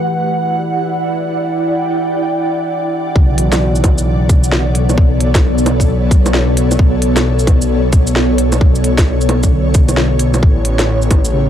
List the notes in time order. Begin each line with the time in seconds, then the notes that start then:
Already playing: E3 E4 G4 B4 D5 F#5
1.07 G5
3.16 B1 C#3 B3, kick
3.32 E3 C#5
3.38 open hi-hat
3.49 F#3, snare, low bongo, shaker
3.75 shaker
3.80 A4, kick, open hi-hat, low bongo
3.98 shaker
4.29 kick, open hi-hat, shaker
4.44 shaker
4.52 snare
4.75 open hi-hat
4.89 low bongo, shaker
4.98 kick
5.21 open hi-hat
5.35 kick, snare, low bongo, shaker
5.58 shaker
5.66 open hi-hat, low bongo
5.80 kick, shaker
5.89 F#3
6.11 kick, open hi-hat, shaker
6.26 open hi-hat, low bongo, shaker
6.34 snare
6.57 open hi-hat
6.71 low bongo, shaker
6.79 kick
7.02 open hi-hat
7.16 snare, low bongo, shaker
7.39 shaker
7.47 kick, open hi-hat, low bongo
7.62 shaker
7.93 kick, open hi-hat, shaker
8.07 shaker
8.16 snare
8.38 open hi-hat
8.52 low bongo, shaker
8.61 kick
8.75 shaker
8.84 open hi-hat
8.98 kick, snare, low bongo, shaker
9.21 shaker
9.29 open hi-hat, low bongo
9.43 kick, shaker
9.52 D3
9.74 kick, open hi-hat, shaker
9.89 open hi-hat, low bongo, shaker
9.97 snare
10.19 open hi-hat
10.34 low bongo, shaker
10.42 A1 A3, kick
10.64 G4, open hi-hat
10.79 snare, low bongo, shaker
10.87 B4
11.02 shaker
11.11 kick, open hi-hat, low bongo
11.25 shaker
11.33 C#3